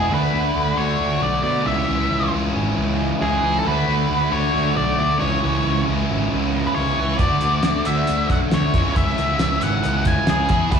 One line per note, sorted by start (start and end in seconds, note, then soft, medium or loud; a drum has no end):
0.00 0.10 G#3 medium
0.00 0.11 B3 medium
0.00 0.11 E4 loud
0.00 0.14 G#4 medium
0.10 0.27 D2 medium
0.10 0.76 D3 medium
0.10 0.76 A3 medium
0.10 0.76 D4 medium
0.10 0.75 F#4 medium
0.14 0.81 B4 medium
0.33 0.50 D2 medium
0.55 0.72 D2 medium
0.76 0.94 D2 medium
0.76 1.65 D3 medium
0.76 1.65 A3 medium
0.76 1.65 D4 medium
0.76 1.64 F#4 medium
0.76 1.23 C#5 medium
1.00 1.16 D2 medium
1.22 1.38 B1 medium
1.22 1.42 D5 medium
1.43 1.60 B2 medium
1.43 1.66 D5 medium
1.64 1.83 C#2 medium
1.64 2.29 C#3 medium
1.64 2.31 E3 medium
1.64 2.31 G#3 medium
1.64 2.31 C#4 medium
1.64 2.29 E5 medium
1.68 2.33 E4 medium
1.89 2.05 C#2 medium
2.10 2.27 C#2 medium
2.30 2.49 C#2 medium
2.30 3.40 C#3 medium
2.30 3.62 E3 medium
2.30 3.42 G#3 medium
2.30 3.42 C#4 medium
2.30 3.66 E4 medium
2.56 2.72 G#1 medium
2.77 3.10 C#2 medium
3.20 3.38 C#2 medium
3.20 3.41 C#3 medium
3.20 3.63 E3 medium
3.20 3.42 G#3 medium
3.20 3.42 C#4 medium
3.20 3.65 E4 medium
3.20 3.59 G#4 medium
3.43 3.60 C#2 medium
3.59 4.29 D3 medium
3.59 3.65 A4 medium
3.64 3.82 D2 medium
3.64 4.30 A3 medium
3.64 4.30 D4 loud
3.64 4.29 F#4 loud
3.64 4.29 B4 medium
3.88 4.04 D2 medium
4.10 4.26 D2 medium
4.30 4.49 D2 medium
4.30 5.19 D3 medium
4.30 5.19 A3 medium
4.30 5.19 D4 medium
4.30 5.18 F#4 medium
4.30 4.76 C#5 medium
4.54 4.71 D2 medium
4.77 4.93 B1 medium
4.77 4.98 D5 medium
4.99 5.15 D2 medium
4.99 5.19 D5 medium
5.19 5.37 C#2 medium
5.19 5.84 C#3 medium
5.19 5.86 E3 medium
5.19 5.85 G#3 medium
5.19 5.86 C#4 medium
5.19 5.88 E4 medium
5.19 5.82 C#5 medium
5.44 5.60 C#2 medium
5.66 5.82 C#2 medium
5.85 6.04 C#2 medium
5.85 6.95 C#3 medium
5.85 7.18 E3 medium
5.85 6.96 G#3 medium
5.85 6.97 C#4 medium
5.85 7.21 E4 medium
6.11 6.26 G#1 medium
6.33 6.65 C#2 medium
6.67 6.74 B4 medium
6.74 6.92 C#2 medium
6.74 6.96 C#3 medium
6.74 7.19 E3 medium
6.74 6.96 G#3 medium
6.74 6.96 C#4 medium
6.74 7.22 E4 medium
6.74 7.19 C#5 medium
6.98 7.14 C#2 medium
7.18 7.36 D2 medium
7.18 7.84 D3 medium
7.18 7.84 A3 medium
7.18 7.84 D4 medium
7.18 7.82 D5 medium
7.18 kick medium
7.18 closed hi-hat medium
7.22 7.82 F#4 medium
7.41 7.59 D2 medium
7.41 closed hi-hat medium
7.63 7.81 D2 medium
7.63 snare loud
7.63 closed hi-hat medium
7.83 8.03 D2 medium
7.83 8.73 D3 medium
7.83 8.73 A3 medium
7.83 8.72 D4 medium
7.83 8.71 F#4 medium
7.83 8.27 E5 medium
7.83 closed hi-hat medium
8.07 8.25 D2 medium
8.07 closed hi-hat medium
8.30 8.46 B1 medium
8.30 8.37 F#5 medium
8.30 kick medium
8.30 closed hi-hat medium
8.51 8.69 D2 medium
8.51 8.96 C#5 medium
8.51 snare loud
8.51 closed hi-hat medium
8.73 8.91 C#2 medium
8.73 9.38 C#3 medium
8.73 9.40 E3 medium
8.73 9.40 G#3 medium
8.73 9.40 C#4 loud
8.73 kick medium
8.73 closed hi-hat medium
8.77 9.42 E4 loud
8.96 9.12 C#2 medium
8.96 9.65 E5 medium
8.96 kick medium
8.96 closed hi-hat medium
9.07 snare soft
9.18 9.35 C#2 medium
9.18 closed hi-hat medium
9.39 9.57 C#2 medium
9.39 10.49 C#3 medium
9.39 10.70 E3 medium
9.39 10.50 G#3 medium
9.39 10.50 C#4 medium
9.39 10.74 E4 medium
9.39 snare loud
9.39 closed hi-hat medium
9.61 9.79 G#1 medium
9.61 10.07 F#5 loud
9.61 closed hi-hat medium
9.84 10.18 C#2 medium
9.84 closed hi-hat medium
10.05 10.30 G#5 medium
10.05 kick medium
10.05 closed hi-hat medium
10.27 10.45 C#2 medium
10.27 10.49 C#3 medium
10.27 10.73 E3 medium
10.27 10.50 G#3 medium
10.27 10.50 C#4 medium
10.27 10.75 E4 medium
10.27 10.72 G#4 medium
10.27 snare loud
10.27 closed hi-hat medium
10.49 10.67 E2 medium
10.49 kick medium
10.49 closed hi-hat medium
10.71 10.80 D2 medium
10.71 10.80 D3 medium
10.71 10.80 A3 medium
10.71 10.80 D4 medium
10.71 10.80 F#4 medium
10.71 10.80 B4 medium
10.71 kick medium
10.71 closed hi-hat medium